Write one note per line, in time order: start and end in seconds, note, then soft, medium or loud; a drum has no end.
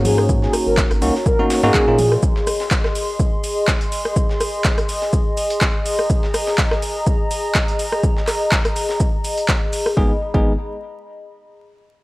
0.00 0.48 G#2 loud
0.00 0.99 A#3 medium
0.00 0.99 C#4 medium
0.00 0.99 D#4 medium
0.00 0.99 F#4 medium
0.00 1.95 F#4 medium
0.00 1.95 C#5 medium
0.00 1.95 A#5 medium
0.05 0.24 G#4 medium
0.05 open hi-hat loud
0.05 low conga medium
0.05 shaker medium
0.18 cross-stick medium
0.29 kick loud
0.29 shaker medium
0.42 0.53 G#4 medium
0.42 snare soft
0.53 cross-stick medium
0.53 open hi-hat loud
0.53 shaker medium
0.66 0.82 G#1 loud
0.66 0.78 A#4 medium
0.77 kick loud
0.77 snare loud
0.77 clap loud
0.77 shaker medium
0.91 1.03 G#1 medium
0.91 cross-stick medium
0.91 closed hi-hat soft
1.02 1.11 C#2 loud
1.02 1.13 A#3 medium
1.02 1.13 C#4 medium
1.02 1.13 D#4 medium
1.02 1.13 F#4 medium
1.02 open hi-hat loud
1.02 shaker medium
1.15 snare soft
1.26 1.45 A#4 medium
1.26 kick loud
1.26 shaker medium
1.39 1.60 A#3 medium
1.39 1.60 C#4 medium
1.39 1.60 D#4 medium
1.39 1.60 F#4 medium
1.39 high conga medium
1.50 snare loud
1.50 open hi-hat loud
1.50 shaker medium
1.63 1.71 G#2 loud
1.63 1.84 A#3 loud
1.63 1.84 C#4 medium
1.63 1.84 D#4 loud
1.63 1.84 F#4 loud
1.63 2.14 G#4 loud
1.63 snare soft
1.63 high conga medium
1.74 kick loud
1.74 clap loud
1.74 shaker medium
1.88 2.17 A#2 medium
1.88 1.97 A#3 medium
1.88 1.97 C#4 medium
1.88 1.97 D#4 medium
1.88 1.97 F4 medium
1.99 9.93 G#4 medium
1.99 9.93 D#5 medium
1.99 5.82 C6 medium
1.99 open hi-hat loud
1.99 low conga medium
1.99 shaker medium
2.12 cross-stick medium
2.23 kick loud
2.23 shaker medium
2.36 snare soft
2.47 cross-stick medium
2.47 open hi-hat loud
2.47 shaker medium
2.60 snare medium
2.71 kick loud
2.71 snare loud
2.71 clap loud
2.71 shaker medium
2.84 cross-stick medium
2.84 snare medium
2.95 open hi-hat loud
2.95 shaker medium
3.19 kick loud
3.19 shaker medium
3.44 open hi-hat loud
3.44 shaker medium
3.68 kick loud
3.68 snare loud
3.68 clap loud
3.68 shaker medium
3.81 closed hi-hat soft
3.92 open hi-hat loud
3.92 shaker medium
4.05 cross-stick medium
4.16 kick loud
4.16 shaker medium
4.29 snare soft
4.40 cross-stick medium
4.40 open hi-hat loud
4.40 shaker medium
4.64 kick loud
4.64 snare loud
4.64 clap loud
4.64 shaker medium
4.78 cross-stick medium
4.78 closed hi-hat soft
4.89 open hi-hat loud
4.89 shaker medium
5.02 snare soft
5.13 kick loud
5.13 shaker medium
5.37 open hi-hat loud
5.37 shaker medium
5.50 closed hi-hat soft
5.61 kick loud
5.61 snare loud
5.61 clap loud
5.61 shaker medium
5.86 9.93 A#5 medium
5.86 open hi-hat loud
5.86 shaker medium
5.99 cross-stick medium
6.10 kick loud
6.10 shaker medium
6.23 snare soft
6.34 cross-stick medium
6.34 open hi-hat loud
6.34 shaker medium
6.47 snare medium
6.58 kick loud
6.58 snare loud
6.58 clap loud
6.58 shaker medium
6.71 cross-stick medium
6.71 snare soft
6.82 open hi-hat medium
6.82 shaker medium
7.07 kick loud
7.07 shaker medium
7.31 open hi-hat loud
7.31 shaker medium
7.55 kick loud
7.55 snare loud
7.55 clap loud
7.55 shaker medium
7.68 closed hi-hat soft
7.79 open hi-hat loud
7.79 shaker medium
7.92 cross-stick medium
8.03 kick loud
8.03 shaker medium
8.17 snare soft
8.27 cross-stick medium
8.27 clap soft
8.27 open hi-hat loud
8.27 shaker medium
8.52 kick loud
8.52 snare loud
8.52 clap loud
8.52 shaker medium
8.65 cross-stick medium
8.65 closed hi-hat soft
8.76 open hi-hat loud
8.76 shaker medium
8.89 snare soft
9.00 kick loud
9.00 shaker medium
9.24 open hi-hat loud
9.24 shaker medium
9.38 closed hi-hat soft
9.48 kick loud
9.48 snare loud
9.48 clap loud
9.48 shaker medium
9.73 open hi-hat loud
9.73 shaker medium
9.86 cross-stick medium
9.97 10.11 G#1 medium
9.97 10.11 G#3 medium
9.97 10.11 B3 medium
9.97 10.11 D#4 medium
9.97 10.19 G#4 medium
9.97 10.11 G#4 medium
9.97 10.19 D#5 medium
9.97 10.19 B5 medium
9.97 kick loud
10.34 10.57 G#1 medium
10.34 10.52 G#3 medium
10.34 10.52 B3 medium
10.34 10.52 D#4 medium
10.34 10.52 G#4 medium
10.34 kick loud